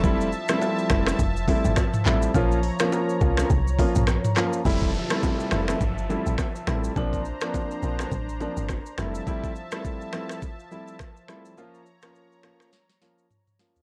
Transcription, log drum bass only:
X:1
M:4/4
L:1/16
Q:"Swing 16ths" 1/4=104
K:F
V:1 name="Log drum bass" clef=bass
F,,,3 z3 F,,,2 F,,,3 G,,, z2 A,,,2 | B,,,3 z3 C,,2 C,,3 B,,,2 z3 | F,,,3 z3 F,,,2 G,,,3 A,,, z2 A,,,2 | B,,,3 z3 B,,,2 A,,,3 G,,,2 z F,,,2 |
z16 | z16 |]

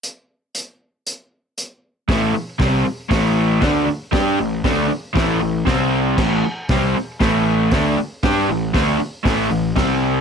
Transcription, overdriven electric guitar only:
X:1
M:4/4
L:1/8
Q:1/4=117
K:Am
V:1 name="Overdriven electric guitar" clef=bass
z8 | [A,,E,A,] z [C,G,C] z [A,,E,A,]2 [D,A,D] z | [G,DG] [A,,E,] [D,A,D] z [A,,E,A,] [A,,E,] [C,G,C]2 | [A,,E,A,] z [C,G,C] z [A,,E,A,]2 [D,A,D] z |
[G,DG] [A,,E,] [D,A,D] z [A,,E,A,] [A,,E,] [C,G,C]2 |]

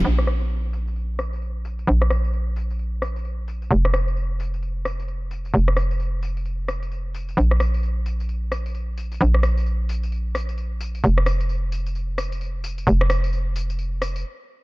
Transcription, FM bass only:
X:1
M:4/4
L:1/8
Q:"Swing 16ths" 1/4=131
K:Bblyd
V:1 name="FM bass" clef=bass
B,,,8 | B,,,8 | F,,,8 | F,,,8 |
B,,,8 | B,,,8 | F,,,8 | F,,,6 z2 |]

